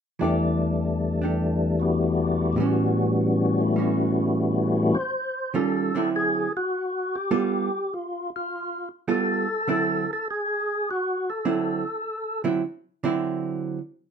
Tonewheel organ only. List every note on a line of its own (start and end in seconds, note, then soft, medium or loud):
0.21 2.59 E2 soft
0.21 2.54 E3 soft
0.21 2.56 G3 soft
0.21 1.79 A3 soft
0.21 2.59 D4 soft
1.79 2.58 A3 soft
1.79 2.58 B3 soft
1.79 2.59 E4 soft
1.79 2.58 F#4 soft
1.79 2.59 G4 soft
2.53 4.92 A2 soft
2.53 3.57 E3 soft
2.57 4.95 G3 soft
2.57 3.60 B3 soft
2.61 4.97 C#4 soft
2.61 4.98 F#4 soft
3.58 4.95 E3 soft
3.58 4.96 A3 soft
3.58 4.96 B3 soft
3.58 4.97 E4 soft
4.95 5.56 C5 medium
5.56 6.10 A4 medium
6.16 6.53 G#4 medium
6.57 7.16 F#4 medium
7.15 7.94 G4 medium
7.94 8.30 F4 medium
8.36 8.89 F4 medium
9.11 9.69 A4 medium
9.70 10.11 A4 medium
10.13 10.28 A4 medium
10.30 10.89 G#4 medium
10.91 11.30 F#4 medium
11.30 12.42 A4 medium